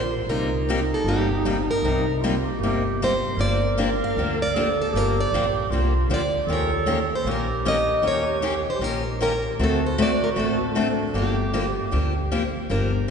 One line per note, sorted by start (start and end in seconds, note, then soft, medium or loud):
0.00 0.21 A#1 medium
0.00 0.29 C5 medium
0.27 0.89 C2 medium
0.27 0.49 C3 medium
0.27 0.49 G3 medium
0.27 0.49 A#3 medium
0.27 2.23 D#4 medium
0.27 0.50 D#4 medium
0.27 0.93 A#4 medium
0.31 0.50 G4 medium
0.69 0.78 C3 medium
0.69 0.79 G3 medium
0.69 0.79 A#3 medium
0.69 0.79 D#4 medium
0.69 0.79 G4 loud
0.94 1.08 A4 medium
1.04 1.67 G1 medium
1.04 1.27 C3 medium
1.04 1.27 G3 medium
1.08 1.27 A#3 medium
1.08 1.28 D#4 medium
1.08 1.27 G4 medium
1.08 1.71 G4 medium
1.45 1.56 C3 medium
1.45 1.56 G3 medium
1.45 1.56 A#3 medium
1.45 1.56 D#4 medium
1.45 1.56 G4 medium
1.71 3.04 A#4 medium
1.82 2.45 C2 medium
1.82 2.04 C3 medium
1.82 2.04 G3 medium
1.82 2.04 A#3 medium
1.82 2.05 D#4 medium
1.82 2.05 G4 medium
2.21 2.34 C3 medium
2.21 2.34 G3 medium
2.21 2.34 A#3 medium
2.21 2.34 D#4 medium
2.21 2.46 F4 medium
2.21 2.34 G4 loud
2.45 2.59 G4 medium
2.59 3.21 G1 medium
2.59 3.09 G4 medium
2.63 2.83 C3 medium
2.63 2.83 G3 medium
2.63 2.83 A#3 medium
2.63 2.83 D#4 medium
2.63 2.83 G4 medium
3.02 3.12 C3 medium
3.02 3.12 G3 medium
3.02 3.12 A#3 medium
3.02 3.12 D#4 medium
3.02 3.12 G4 medium
3.02 3.40 C5 medium
3.37 3.99 G1 medium
3.37 3.59 D3 medium
3.37 3.59 F3 medium
3.37 3.59 A#3 medium
3.37 3.59 D4 medium
3.37 3.60 G4 medium
3.37 4.56 A#4 loud
3.37 3.75 D5 loud
3.78 3.88 D3 medium
3.78 3.88 F3 medium
3.78 3.89 A#3 medium
3.78 3.89 D4 loud
3.78 3.89 G4 medium
4.04 4.38 F5 medium
4.16 4.78 D2 medium
4.16 4.37 D3 medium
4.16 4.38 F3 medium
4.16 4.38 A#3 medium
4.16 4.38 D4 medium
4.16 4.38 G4 medium
4.42 4.77 D5 medium
4.55 4.66 D3 medium
4.55 4.66 F3 medium
4.55 4.66 A#3 medium
4.55 4.66 D4 medium
4.55 4.67 G4 medium
4.55 4.95 A4 medium
4.82 4.97 A4 medium
4.93 5.24 G1 medium
4.93 5.15 D3 medium
4.93 5.15 F3 medium
4.93 5.15 A#3 medium
4.93 5.15 D4 medium
4.93 5.73 G4 medium
4.93 5.15 G4 medium
4.97 5.19 A#4 medium
5.20 6.07 D5 medium
5.32 5.65 A#1 medium
5.32 5.44 D3 medium
5.32 5.44 F3 medium
5.32 5.44 A#3 medium
5.32 5.44 D4 medium
5.32 5.45 G4 loud
5.70 6.03 C2 medium
5.70 5.92 D3 medium
5.70 5.93 F3 medium
5.70 5.92 A#3 medium
5.70 5.93 D4 medium
5.70 6.33 F4 medium
5.70 5.93 G4 medium
6.09 6.42 D2 medium
6.09 6.21 D3 medium
6.09 6.21 F3 medium
6.09 6.21 A#3 medium
6.09 6.21 D4 medium
6.09 6.21 G4 medium
6.14 6.48 D5 medium
6.46 7.09 D#2 medium
6.46 6.69 D#3 medium
6.46 6.70 A#3 medium
6.46 6.70 C#4 medium
6.46 6.70 G4 medium
6.46 7.21 A4 medium
6.46 6.70 A#4 medium
6.53 7.09 C#5 loud
6.86 6.98 D#3 medium
6.86 6.98 A#3 medium
6.86 6.98 C#4 medium
6.86 6.98 G4 medium
6.86 6.98 A#4 medium
7.15 7.27 C5 medium
7.24 7.87 A#1 medium
7.24 7.47 D#3 medium
7.24 7.47 A#3 medium
7.24 7.47 C#4 medium
7.24 9.31 G4 medium
7.24 7.47 G4 medium
7.24 7.47 A#4 medium
7.31 7.65 A#4 medium
7.65 7.76 D#3 medium
7.65 7.76 A#3 medium
7.65 7.76 C#4 medium
7.65 7.76 G4 medium
7.65 7.76 A#4 medium
7.65 8.06 D#5 medium
8.02 8.65 D#2 medium
8.02 8.24 D#3 medium
8.02 8.24 A#3 medium
8.02 8.24 C#4 medium
8.02 8.24 G4 medium
8.02 8.24 A#4 medium
8.08 8.64 C#5 medium
8.42 8.53 D#3 medium
8.42 8.53 A#3 medium
8.42 8.53 C#4 medium
8.42 8.54 G4 medium
8.42 8.53 A#4 medium
8.70 8.84 C5 medium
8.79 9.42 A#1 medium
8.79 9.02 D#3 medium
8.79 9.02 A#3 medium
8.79 9.02 C#4 medium
8.79 9.02 G4 medium
8.79 9.02 A#4 medium
8.84 9.21 A#4 medium
9.21 9.31 D#3 medium
9.21 9.31 A#3 medium
9.21 9.32 C#4 medium
9.21 9.32 G4 medium
9.21 9.32 A#4 medium
9.21 9.57 A#4 medium
9.59 10.21 D2 medium
9.59 9.80 D3 medium
9.59 9.80 A3 medium
9.59 9.80 C4 medium
9.59 10.77 F#4 loud
9.59 9.80 F#4 medium
9.59 9.80 A4 medium
9.64 9.83 A4 medium
9.86 9.99 C5 medium
9.98 10.09 D3 medium
9.98 10.09 A3 medium
9.98 10.09 C4 medium
9.98 10.09 F#4 medium
9.98 10.09 A4 loud
10.02 10.24 D5 medium
10.24 10.29 A#4 medium
10.36 10.98 A1 medium
10.36 10.57 D3 medium
10.36 10.57 A3 medium
10.36 10.57 C4 medium
10.36 10.57 F#4 medium
10.36 10.57 A4 medium
10.36 11.15 A4 medium
10.75 10.86 D3 medium
10.75 10.86 A3 medium
10.75 10.86 C4 medium
10.75 11.16 D4 medium
10.75 10.86 F#4 medium
10.75 10.87 A4 medium
11.13 11.76 G1 medium
11.13 11.35 D3 medium
11.13 11.35 F3 medium
11.13 11.35 A#3 medium
11.13 11.35 D4 medium
11.13 12.54 G4 medium
11.13 11.35 G4 medium
11.18 12.28 G4 medium
11.53 11.64 D3 medium
11.53 11.64 F3 medium
11.53 11.64 A#3 medium
11.53 11.65 D4 medium
11.53 11.65 G4 medium
11.92 12.54 D2 medium
11.92 12.12 D3 medium
11.92 12.13 F3 medium
11.92 12.13 A#3 medium
11.92 12.13 D4 medium
11.92 12.13 G4 medium
12.32 12.42 D3 medium
12.32 12.42 F3 medium
12.32 12.42 A#3 medium
12.32 12.42 D4 medium
12.32 12.43 G4 medium
12.70 13.10 G1 medium
12.70 12.90 D3 medium
12.70 12.90 F3 medium
12.70 12.90 A#3 medium
12.70 12.91 D4 medium
12.70 12.91 G4 medium
12.70 13.06 A#4 medium